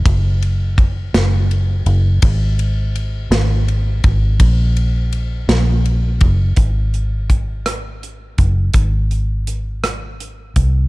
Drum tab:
RD |xxxxxx|xxxxxx|xxxxxx|------|
HH |------|------|------|xxxxxx|
SD |---o--|---o--|---o--|---r--|
BD |o-o---|o----o|o----o|o-o--o|

RD |------|
HH |xxxxxx|
SD |---r--|
BD |o----o|